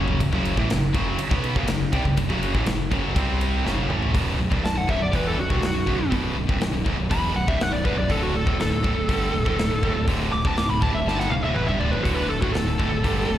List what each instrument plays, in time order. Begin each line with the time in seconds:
Already playing: picked electric bass F#1, distorted electric guitar F#2 C#3 F#3 A#3 C#4 F#4
0.08 floor tom
0.20 picked electric bass F#1, distorted electric guitar F#2 C#3, kick, ride
0.32 picked electric bass F#1, distorted electric guitar F#2 C#3 F#3, kick
0.45 ride
0.57 picked electric bass A1, distorted electric guitar A2 E3, kick
0.69 picked electric bass F#1, distorted electric guitar F#2 C#3, snare, ride
0.93 picked electric bass F#1, distorted electric guitar F#2 C#3 F#3, kick, ride
1.18 muted distorted electric guitar stroke, muted picked electric bass stroke, ride
1.29 picked electric bass B1, distorted electric guitar B2 F#3 B3, kick
1.44 ride
1.55 picked electric bass F#1, distorted electric guitar F#2 C#3, kick
1.68 picked electric bass F#1, distorted electric guitar F#2 C#3, snare, ride
1.92 picked electric bass C2, distorted electric guitar C3 G3, kick, ride
2.04 picked electric bass F#1, distorted electric guitar F#2 C#3, kick
2.17 picked electric bass F#1, distorted electric guitar F#2 C#3, kick, ride
2.29 picked electric bass F#1, distorted electric guitar F#2 C#3 F#3, kick
2.43 ride
2.54 picked electric bass A1, distorted electric guitar A2 E3, kick
2.66 picked electric bass F#1, distorted electric guitar F#2 C#3, snare, ride
2.91 picked electric bass F#1, distorted electric guitar F#2 C#3 F#3, kick, ride
3.14 picked electric bass C2, distorted electric guitar C3 G3 C4, kick, ride
3.41 ride
3.64 picked electric bass F#1, distorted electric guitar F#2 C#3 F#3, snare
3.78 high tom
3.88 picked electric bass A1, distorted electric guitar A2 E3 A3, mid tom
4.02 floor tom
4.13 picked electric bass B0, distorted electric guitar B1 F#2 B2, kick, open hi-hat
4.38 picked electric bass B0, distorted electric guitar B1 F#2
4.50 picked electric bass C1, distorted electric guitar C2 G2, kick
4.62 picked electric bass B0, distorted electric guitar B1 F#2, lead electric guitar A5, snare, open hi-hat
4.75 picked electric bass B0, distorted electric guitar B1 F#2, lead electric guitar F#5
4.87 picked electric bass B0, distorted electric guitar B1 F#2, lead electric guitar E5, kick
4.99 picked electric bass B0, distorted electric guitar B1 F#2, lead electric guitar D5
5.11 picked electric bass E1, distorted electric guitar E2 B2 E3, lead electric guitar B4, kick, open hi-hat
5.27 lead electric guitar A4
5.37 picked electric bass B0, distorted electric guitar B1 F#2, lead electric guitar F#4
5.49 picked electric bass C1, distorted electric guitar C2 G2, kick
5.61 picked electric bass B0, distorted electric guitar B1 F#2, snare, open hi-hat
5.66 lead electric guitar F#4
5.73 picked electric bass B0, distorted electric guitar B1 F#2
5.86 picked electric bass B0, distorted electric guitar B1 F#2, kick
5.98 picked electric bass B0, distorted electric guitar B1 F#2
6.10 picked electric bass B0, distorted electric guitar B1 F#2 B2, kick, open hi-hat
6.35 picked electric bass B0, distorted electric guitar B1 F#2
6.47 picked electric bass C1, distorted electric guitar C2 G2, kick
6.60 picked electric bass B0, distorted electric guitar B1 F#2, snare, open hi-hat
6.72 picked electric bass B0, distorted electric guitar B1 F#2
6.84 picked electric bass B0, distorted electric guitar B1 F#2, kick
6.98 picked electric bass B0, distorted electric guitar B1 F#2
7.09 picked electric bass E1, distorted electric guitar E2 B2 E3, lead electric guitar B5, kick, open hi-hat
7.34 picked electric bass B0, distorted electric guitar B1 F#2, lead electric guitar F#5
7.47 picked electric bass C1, distorted electric guitar C2 G2, lead electric guitar E5, kick
7.59 picked electric bass B0, distorted electric guitar B1 F#2, lead electric guitar F#5, snare, open hi-hat
7.72 picked electric bass B0, distorted electric guitar B1 F#2, lead electric guitar D5
7.84 picked electric bass B0, distorted electric guitar B1 F#2, lead electric guitar B4, kick
7.97 picked electric bass B0, distorted electric guitar B1 F#2, lead electric guitar D5
8.09 picked electric bass D1, distorted electric guitar D2 A2 D3, lead electric guitar A4, kick, open hi-hat
8.23 lead electric guitar F#4
8.34 picked electric bass D1, distorted electric guitar D2 A2, lead electric guitar A4
8.46 picked electric bass D1, distorted electric guitar D2 A2, kick
8.59 picked electric bass D1, distorted electric guitar D2 A2, lead electric guitar A4, snare, open hi-hat
8.71 picked electric bass D1, distorted electric guitar D2 A2
8.83 picked electric bass D1, distorted electric guitar D2 A2, kick
8.97 picked electric bass D1, distorted electric guitar D2 A2
9.08 picked electric bass G1, distorted electric guitar G2 D3 G3, kick, open hi-hat
9.33 picked electric bass D1, distorted electric guitar D2 A2
9.46 picked electric bass D1, distorted electric guitar D2 A2, kick
9.59 picked electric bass D1, distorted electric guitar D2 A2, snare, open hi-hat
9.70 picked electric bass D1, distorted electric guitar D2 A2
9.83 picked electric bass D1, distorted electric guitar D2 A2, kick
9.95 picked electric bass D1, distorted electric guitar D2 A2
10.07 picked electric bass D1, distorted electric guitar D2 A2 D3, kick, open hi-hat
10.32 picked electric bass D1, distorted electric guitar D2 A2, lead electric guitar D6
10.45 picked electric bass D1, distorted electric guitar D2 A2, lead electric guitar A5, kick
10.57 picked electric bass D1, distorted electric guitar D2 A2, lead electric guitar D6, snare, open hi-hat
10.70 picked electric bass D1, distorted electric guitar D2 A2, lead electric guitar B5
10.81 picked electric bass D1, distorted electric guitar D2 A2, lead electric guitar A5, kick
10.94 picked electric bass D1, distorted electric guitar D2 A2, lead electric guitar E5
11.06 picked electric bass G1, distorted electric guitar G2 D3 G3, lead electric guitar A5, snare
11.19 lead electric guitar F#5, snare
11.30 picked electric bass D1, distorted electric guitar D2 A2, lead electric guitar F5, high tom
11.43 picked electric bass D1, distorted electric guitar D2 A2, lead electric guitar E5, high tom
11.54 picked electric bass E1, distorted electric guitar E2 B2, lead electric guitar B4, mid tom
11.67 picked electric bass G1, distorted electric guitar G2 D3, lead electric guitar E5, mid tom
11.79 picked electric bass D1, distorted electric guitar D2 A2, lead electric guitar D5, floor tom
11.91 picked electric bass D1, distorted electric guitar D2 A2, lead electric guitar B4, floor tom
12.03 picked electric bass D1, distorted electric guitar D2 A2 D3, lead electric guitar F#4, kick, open hi-hat
12.14 lead electric guitar B4
12.29 picked electric bass D1, distorted electric guitar D2 A2, lead electric guitar A4
12.42 picked electric bass D1, distorted electric guitar D2 A2, lead electric guitar F#4, kick
12.52 picked electric bass D1, distorted electric guitar D2 A2, lead electric guitar A4, snare, open hi-hat
12.66 picked electric bass D1, distorted electric guitar D2 A2
12.78 picked electric bass D1, distorted electric guitar D2 A2, kick
12.90 picked electric bass D1, distorted electric guitar D2 A2
13.02 picked electric bass G1, distorted electric guitar G2 D3 G3, kick, open hi-hat
13.27 picked electric bass D1, distorted electric guitar D2 A2